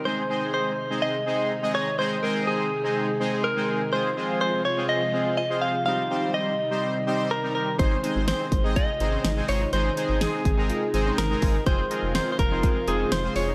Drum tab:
HH |--------|--------|--------|--------|
SD |--------|--------|--------|--------|
BD |--------|--------|--------|--------|

HH |xxxxxxxo|xxxxxxxo|xxxxxxxo|
SD |--o---o-|--o---o-|--o---o-|
BD |o--oo---|---o---o|o--oo---|